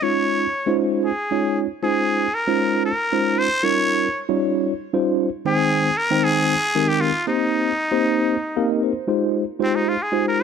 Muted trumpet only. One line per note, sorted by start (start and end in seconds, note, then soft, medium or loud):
0.03 0.80 C#5 medium
1.05 1.59 G#4 medium
1.83 2.36 G#4 medium
2.34 2.85 A#4 medium
2.86 3.40 A#4 medium
3.38 3.65 C5 loud
3.64 4.22 C#5 loud
5.47 5.99 G#4 loud
5.97 6.25 A#4 loud
6.24 6.90 G#4 loud
6.88 7.02 G4 loud
7.01 7.27 F4 medium
7.28 8.79 D#4 medium
9.63 9.77 C4 medium
9.75 9.90 D#4 medium
9.89 10.04 F4 medium
10.03 10.26 G#4 medium
10.28 10.42 A#4 medium